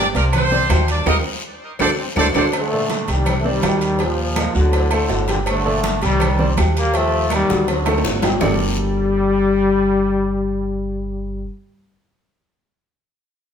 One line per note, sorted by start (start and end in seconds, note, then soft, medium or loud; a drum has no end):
0.00 0.12 G3 medium
0.00 0.12 G4 medium
0.00 0.12 G5 medium
0.15 0.66 C2 loud
0.15 0.24 A#3 medium
0.15 0.45 C4 medium
0.15 0.25 G4 medium
0.15 0.24 A#4 medium
0.15 0.45 C5 medium
0.15 0.45 D5 medium
0.15 cowbell medium
0.15 high conga soft
0.15 low agogo medium
0.15 short guiro medium
0.33 0.85 C4 loud
0.33 0.86 G4 medium
0.33 0.85 C5 loud
0.33 cowbell loud
0.33 high conga soft
0.33 low conga medium
0.33 low agogo loud
0.33 claves medium
0.52 0.67 C4 loud
0.52 0.67 C5 medium
0.52 0.67 D5 loud
0.52 high conga soft
0.52 low conga medium
0.70 1.04 D#2 loud
0.70 1.00 G3 medium
0.70 1.00 G4 medium
0.70 1.01 G5 medium
0.70 cowbell medium
0.70 high conga medium
0.70 low timbale medium
0.70 low agogo loud
0.70 short guiro medium
0.70 claves medium
0.88 1.07 D4 medium
0.88 1.06 A#4 medium
0.88 1.07 D5 loud
0.88 low agogo medium
0.88 short guiro medium
1.06 1.20 D#2 loud
1.06 1.16 D#4 medium
1.06 1.18 F4 medium
1.06 1.18 G4 loud
1.06 1.16 G4 loud
1.06 1.18 A#4 loud
1.06 1.16 A#4 loud
1.06 1.16 D#5 loud
1.06 cowbell medium
1.06 high conga loud
1.06 high timbale loud
1.06 long guiro loud
1.06 claves loud
1.79 1.93 D2 loud
1.79 1.89 D4 medium
1.79 1.92 D4 loud
1.79 1.92 F#4 loud
1.79 1.89 A4 loud
1.79 1.92 A4 loud
1.79 1.89 C5 loud
1.79 1.89 D5 loud
1.79 cowbell loud
1.79 high conga medium
1.79 high timbale loud
1.79 long guiro medium
1.79 claves loud
1.99 2.07 C4 medium
2.16 2.30 D2 loud
2.16 2.27 A2 medium
2.16 2.34 A3 medium
2.16 2.29 D4 medium
2.16 2.26 D4 loud
2.16 2.28 F#4 medium
2.16 2.29 A4 medium
2.16 2.26 A4 loud
2.16 2.26 C5 loud
2.16 2.26 D5 loud
2.16 cowbell loud
2.16 high conga loud
2.16 high timbale loud
2.16 long guiro loud
2.16 claves loud
2.21 2.29 D3 medium
2.34 2.48 D2 medium
2.34 2.53 D4 loud
2.34 2.44 D4 medium
2.34 2.47 D4 loud
2.34 2.47 F#4 loud
2.34 2.44 A4 medium
2.34 2.47 A4 loud
2.34 2.44 C5 loud
2.34 2.44 D5 medium
2.34 cowbell loud
2.34 high conga loud
2.34 high timbale loud
2.34 long guiro loud
2.34 claves loud
2.39 2.46 A#2 medium
2.39 2.47 D3 medium
2.52 3.06 D3 medium
2.52 cowbell loud
2.52 high conga soft
2.52 low agogo loud
2.52 long guiro medium
2.57 3.07 A3 loud
2.72 3.02 A#2 medium
2.72 3.02 A4 medium
2.72 3.02 D5 medium
2.72 high conga soft
2.90 cowbell medium
2.90 high conga loud
2.90 low timbale medium
2.90 low agogo medium
2.90 short guiro medium
3.08 3.60 C2 loud
3.08 3.39 G3 medium
3.08 3.39 G4 medium
3.08 3.39 G5 medium
3.08 cowbell medium
3.08 high conga soft
3.08 low agogo medium
3.08 short guiro medium
3.12 3.40 D#3 medium
3.12 3.41 G3 loud
3.26 cowbell loud
3.26 high conga soft
3.26 low conga medium
3.26 low agogo loud
3.26 long guiro medium
3.26 claves medium
3.40 3.46 A3 medium
3.45 3.60 C4 loud
3.45 3.60 C5 medium
3.45 3.60 D5 medium
3.45 high conga soft
3.49 4.02 D#3 medium
3.49 4.02 G3 loud
3.62 4.49 D#2 loud
3.62 3.94 G3 medium
3.62 3.94 G4 medium
3.62 3.94 G5 medium
3.62 cowbell medium
3.62 high conga medium
3.62 low timbale medium
3.62 low agogo loud
3.62 short guiro medium
3.62 claves medium
3.81 low agogo medium
3.81 short guiro medium
3.99 4.30 G3 medium
3.99 4.30 G4 medium
3.99 4.31 G5 medium
3.99 cowbell loud
3.99 low agogo medium
3.99 long guiro medium
4.03 4.57 A#2 medium
4.03 4.57 F3 loud
4.18 high conga soft
4.36 4.52 A#3 medium
4.36 4.52 A#4 medium
4.36 4.53 D#5 medium
4.36 cowbell medium
4.36 high conga loud
4.36 low timbale medium
4.36 low agogo loud
4.36 short guiro medium
4.36 claves medium
4.55 5.06 D2 medium
4.55 5.08 A2 medium
4.55 5.07 D3 loud
4.55 4.85 F#3 medium
4.55 4.86 F#4 medium
4.55 4.86 F#5 medium
4.55 high conga soft
4.55 short guiro medium
4.73 cowbell loud
4.73 high conga soft
4.73 low agogo medium
4.73 long guiro medium
4.91 5.22 A3 loud
4.91 5.23 A4 medium
4.91 5.23 C5 loud
4.91 high conga soft
4.91 low agogo loud
4.91 claves medium
5.09 5.96 G1 loud
5.09 5.28 A2 medium
5.09 5.29 D3 loud
5.09 cowbell medium
5.09 high conga soft
5.09 low timbale medium
5.09 short guiro medium
5.28 5.39 A#2 medium
5.28 5.39 D3 medium
5.28 5.59 G3 medium
5.28 5.59 G4 loud
5.28 5.59 G5 medium
5.28 cowbell medium
5.28 high conga medium
5.28 low agogo medium
5.28 short guiro medium
5.46 6.00 D3 medium
5.46 5.99 A3 loud
5.46 cowbell loud
5.46 high conga soft
5.46 low agogo loud
5.46 long guiro medium
5.46 claves medium
5.65 5.96 A#2 medium
5.65 5.96 A4 medium
5.65 5.96 D5 medium
5.65 high conga soft
5.84 cowbell medium
5.84 high conga loud
5.84 low timbale medium
5.84 low agogo medium
5.84 short guiro medium
6.02 6.54 C2 loud
6.02 6.54 D#3 medium
6.02 6.32 G3 loud
6.02 6.54 G3 loud
6.02 6.32 G4 medium
6.02 6.33 G5 medium
6.02 cowbell medium
6.02 high conga soft
6.02 low agogo medium
6.02 short guiro medium
6.20 cowbell loud
6.20 high conga soft
6.20 low conga medium
6.20 low agogo loud
6.20 long guiro medium
6.20 claves medium
6.39 6.54 C4 medium
6.39 6.54 C5 medium
6.39 6.54 D5 medium
6.39 high conga soft
6.39 low conga medium
6.57 7.44 D#2 loud
6.57 6.87 G3 medium
6.57 6.88 G4 medium
6.57 6.88 G5 medium
6.57 cowbell medium
6.57 high conga medium
6.57 low timbale medium
6.57 low agogo loud
6.57 short guiro medium
6.57 claves medium
6.76 6.94 G3 medium
6.76 6.93 A#3 loud
6.76 low agogo medium
6.76 short guiro medium
6.94 7.32 F3 medium
6.94 7.25 G3 medium
6.94 7.32 A3 loud
6.94 7.25 G4 medium
6.94 7.25 G5 medium
6.94 cowbell loud
6.94 low agogo loud
6.94 long guiro medium
7.12 high conga soft
7.30 7.67 D#3 medium
7.30 7.66 G3 loud
7.30 7.46 A#3 medium
7.30 7.46 A#4 medium
7.30 7.47 D#5 medium
7.30 cowbell medium
7.30 high conga loud
7.30 low timbale medium
7.30 low agogo loud
7.30 short guiro medium
7.30 claves medium
7.49 8.01 D2 loud
7.49 7.80 F#3 medium
7.49 7.80 F#4 medium
7.49 7.80 F#5 medium
7.49 high bongo medium
7.49 high conga soft
7.49 short guiro medium
7.68 8.20 D3 medium
7.68 8.20 F#3 medium
7.68 cowbell loud
7.68 high bongo medium
7.68 low agogo loud
7.68 long guiro medium
7.86 8.16 A3 medium
7.86 8.17 A4 medium
7.86 8.17 C5 medium
7.86 low bongo medium
7.86 high conga soft
7.86 high timbale medium
7.86 low agogo loud
7.86 claves medium
7.98 high timbale medium
8.04 8.37 G1 loud
8.04 cowbell medium
8.04 low bongo medium
8.04 short guiro medium
8.22 8.38 G3 medium
8.22 8.38 G4 medium
8.22 8.38 G5 loud
8.22 cowbell medium
8.22 low bongo loud
8.22 high conga medium
8.22 low timbale medium
8.22 low agogo medium
8.22 short guiro medium
8.41 11.44 G1 loud
8.41 11.44 G3 medium
8.41 11.46 G3 loud
8.41 11.44 D4 medium
8.41 11.44 G4 medium
8.41 11.44 A4 medium
8.41 11.45 A#4 medium
8.41 11.45 D5 loud
8.41 low bongo loud
8.41 low conga loud
8.41 low timbale loud
8.41 long guiro loud
8.41 claves medium